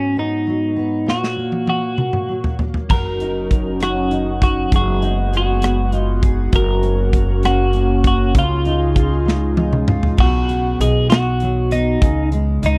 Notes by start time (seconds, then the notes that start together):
Already playing: G#2 F#3 B3 C#4
0.17 B3 D#4
0.47 F#3
0.76 B3
1.06 A#2 F#4, snare
1.24 snare
1.36 A#3
1.52 high tom
1.66 F#3 F#4, high tom
1.97 A#3, mid tom
2.13 mid tom
2.29 F#3
2.44 floor tom
2.59 A#3, floor tom
2.74 floor tom
2.89 F#1 F#3 C#4 D#4 A#4, kick, crash
3.20 D#4, closed hi-hat
3.51 A#4, kick, closed hi-hat
3.80 C#4 F#4, cross-stick, closed hi-hat
4.11 D#4, closed hi-hat
4.42 F#4 A#4, kick, closed hi-hat
4.71 F#1 F#3 G#3 B3 F#4 G#4, kick, closed hi-hat
4.76 F#4
5.02 D#4, closed hi-hat
5.32 G#4, closed hi-hat
5.37 F#4
5.62 B3, cross-stick, closed hi-hat
5.92 D#4 F4, closed hi-hat
6.23 G#4, kick, closed hi-hat
6.52 F#1 F#3 A#3 C#4 F#4 A#4, kick, closed hi-hat
6.83 C#4, closed hi-hat
7.13 F#4, kick, closed hi-hat
7.43 A#3 F#4, cross-stick, closed hi-hat
7.73 C#4, closed hi-hat
8.04 F#4, kick, closed hi-hat
8.34 C#2 C#3 D#4 F4 G#4, kick, closed hi-hat
8.39 F4
8.65 D#4, closed hi-hat
8.96 F4, kick, closed hi-hat
9.25 G#3, snare
9.57 D#4, high tom
9.73 mid tom
9.88 F4, mid tom
10.03 floor tom
10.17 B1 B2 F#4, kick, crash
10.48 B3, closed hi-hat
10.79 B1 D#4 G#4, closed hi-hat
11.10 B3 F#4, snare, closed hi-hat
11.40 F#3, closed hi-hat
11.71 B3 D#4, closed hi-hat
12.01 C#2 C#3, kick, closed hi-hat
12.32 G#3, closed hi-hat
12.62 C#2 D#4, closed hi-hat